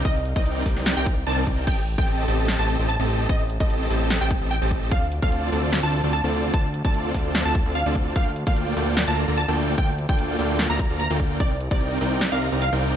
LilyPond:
<<
  \new Staff \with { instrumentName = "Synth pluck" } { \time 4/4 \key g \minor \tempo 4 = 148 ees''8 r16 ees''8 r4 g''8 r16 a''8 r8 | g''8 r16 g''8 r4 a''8 r16 a''8 r8 | ees''8 r16 ees''8 r4 g''8 r16 g''8 r8 | f''8 r16 f''8 r4 a''8 r16 a''8 r8 |
a''8 r16 a''8 r4 a''8 r16 f''8 r8 | f''8 r16 f''8 r4 a''8 r16 a''8 r8 | g''8 r16 g''8 r4 bes''8 r16 bes''8 r8 | d''8 r16 d''8 r4 f''8 r16 f''8 r8 | }
  \new Staff \with { instrumentName = "Supersaw synth" } { \time 4/4 \key g \minor <c' g''>16 r8 <c' ees' bes' d'' g''>8. <c' bes' d''>8. <c' ees' bes' d'' bes''>8 r16 <c' ees' bes' d'' a''>8 <c' ees' bes' g''>8 | <c' g' a' ees'' a''>16 r8 <c' g' a' ees'' a''>8. <c' g' a' ees'' a''>8. <c' g' a' ees'' a''>8 <c' g' a' ees'' a''>16 r16 <c' g' a' ees'' a''>8. | <c' g' a' a''>16 r8 <c' g' a' ees'' a''>8. <c' g' a' ees'' a''>8. <c' g' a' ees'' a''>8 <c' g' a' ees'' a''>16 r16 <c' g' a' ees'' a''>8. | <c' f' a' d'' a''>16 r8 <c' f' a' d'' a''>8. <c' f' a' d'' a''>8. <c' f' a' d'' a''>8 <c' f' a' d'' a''>16 r16 <c' f' a' d'' a''>8. |
<c' f' d''>16 r8 <c' f' a' d'' a''>8. <c' f' a' d'' a''>8. <c' f' a' d'' a''>8 <c' f' a' d'' a''>16 r16 <c' f' a' d'' a''>8. | <bes f' a' d'' g''>16 r8 <bes f' a' d'' g''>8. <bes f' a' d'' g''>8. <bes f' a' d'' bes''>8 <bes f' a' d'' bes''>16 r16 <bes f' a' d'' g''>8. | bes16 r8 <bes f' a' d'' g''>8. <bes f' a' d'' g''>8. <bes f' a' d'' bes''>8 <bes f' a' d'' bes''>16 r16 <bes f' a' d'' g''>8. | <c' ees' bes' d'' g''>16 r8 <c' ees' bes' d'' g''>8. <c' ees' bes' d'' g''>8. <c' ees' bes' d'' bes''>8 <c' ees' bes' d'' bes''>16 r16 <c' ees' bes' d'' g''>8. | }
  \new Staff \with { instrumentName = "Analog synth bass" } { \clef bass \time 4/4 \key g \minor c,8. c,8. c,8. c,8. c,8 c,8 | a,,8. a,,8. a,,8. a,,8 a,,8 a,,8. | a,,8. a,,8. a,,8. a,,8 a,,8 a,,8. | d,8. d,8. d,8. d,8 d,8 d,8. |
d,8. d,8. d,8. d,8 d,8 d,8. | d,8. d,8. d,8. d,8 d,8 d,8. | d,8. d,8. d,8. d,8 d,8 d,8. | c,8. c,8. c,8. c,8 c,8 c,8. | }
  \new DrumStaff \with { instrumentName = "Drums" } \drummode { \time 4/4 <hh bd>8 hh16 bd16 hh8 <hho bd>16 sn16 <hh sn>8 <hh bd>8 hh8 <hh bd>8 | <cymc hh bd>8 hh16 bd16 hh8 hho8 <hh sn>8 hh8 hh8 hh8 | <hh bd>8 hh16 bd16 hh8 hho8 <hh sn>8 <hh bd>8 hh8 <hh bd>8 | <hh bd>8 hh16 bd16 hh8 hho8 <hh sn>8 hh8 hh8 hh8 |
<hh bd>8 hh16 bd16 hh8 <hho bd>8 <hh sn>8 <hh bd>8 hh8 <hh bd>8 | <hh bd>8 hh16 bd16 hh8 hho8 <hh sn>8 hh8 hh8 hh8 | <hh bd>8 hh16 bd16 hh8 hho8 <hh sn>8 <hh bd>8 hh8 <hh bd>8 | <hh bd>8 hh16 bd16 hh8 hho8 <hh sn>8 hh8 hh8 hh8 | }
>>